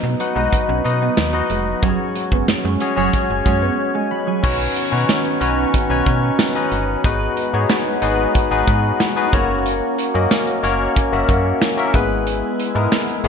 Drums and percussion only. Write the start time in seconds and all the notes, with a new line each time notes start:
0.20 closed hi-hat
0.53 kick, closed hi-hat
0.85 closed hi-hat
1.17 snare, closed hi-hat, tambourine
1.50 closed hi-hat
1.83 kick, closed hi-hat
2.16 closed hi-hat
2.32 kick
2.48 snare, closed hi-hat, tambourine
2.80 closed hi-hat
3.13 kick, closed hi-hat
3.46 kick, closed hi-hat
4.44 kick, crash
4.76 closed hi-hat
5.09 snare, closed hi-hat, tambourine
5.25 closed hi-hat
5.41 closed hi-hat
5.74 kick, closed hi-hat
6.06 kick, closed hi-hat
6.39 snare, closed hi-hat, tambourine
6.55 closed hi-hat
6.72 closed hi-hat
7.04 kick, closed hi-hat
7.37 closed hi-hat
7.69 snare, closed hi-hat, tambourine
8.02 closed hi-hat
8.35 kick, closed hi-hat
8.68 kick, closed hi-hat
9.00 snare, closed hi-hat, tambourine
9.17 closed hi-hat
9.33 kick, closed hi-hat
9.66 closed hi-hat
9.99 closed hi-hat
10.31 snare, closed hi-hat, tambourine
10.47 closed hi-hat
10.64 closed hi-hat
10.96 kick, closed hi-hat
11.29 kick, closed hi-hat
11.62 snare, closed hi-hat, tambourine
11.78 closed hi-hat
11.94 kick, closed hi-hat
12.27 closed hi-hat
12.60 closed hi-hat
12.92 snare, closed hi-hat, tambourine
13.08 closed hi-hat
13.24 closed hi-hat